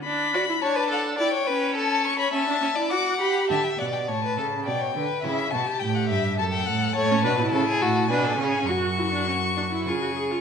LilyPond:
<<
  \new Staff \with { instrumentName = "Violin" } { \time 3/4 \key d \major \tempo 4 = 104 b''4 a''8 fis''8 g''4 | a''8 cis'''16 b''16 a''4 d'''8 b''8 | a''16 g''16 fis''16 g''16 a''4 g''4 | e''8 a''8 g''16 fis''16 e''8 a''16 g''16 fis''8 |
\key fis \minor a''4 a''4 gis''4 | cis'''2 cis'''4 | }
  \new Staff \with { instrumentName = "Violin" } { \time 3/4 \key d \major r8 d''8 cis''16 b'16 a'8 d''16 cis''16 b'8 | a'8. cis''16 e''8. d''16 fis''4 | e''8 d''8 cis''16 b'16 a'8 d''16 cis''16 b'8 | e'8 fis'16 g'4~ g'16 a'4 |
\key fis \minor cis''8 b'8 a'16 gis'16 fis'8 b'16 a'16 gis'8 | fis'2 gis'4 | }
  \new Staff \with { instrumentName = "Viola" } { \time 3/4 \key d \major d'8 fis'16 e'16 d'4 e'8 cis'8~ | cis'4 cis'16 d'16 cis'16 e'16 fis'8 g'8 | r2. | r2. |
\key fis \minor a16 cis'16 d'16 e'4~ e'16 d'8 cis'8 | fis'8 e'16 d'16 cis'8 d'16 e'16 eis'16 fis'16 gis'16 eis'16 | }
  \new Staff \with { instrumentName = "Cello" } { \clef bass \time 3/4 \key d \major r2. | r2. | d8 b,8 a,8 cis8 b,8 d8 | cis8 b,8 a,8 g,8 fis,8 a,8 |
\key fis \minor a,8 b,8 cis8 a,8 b,8 cis8 | fis,2 cis4 | }
>>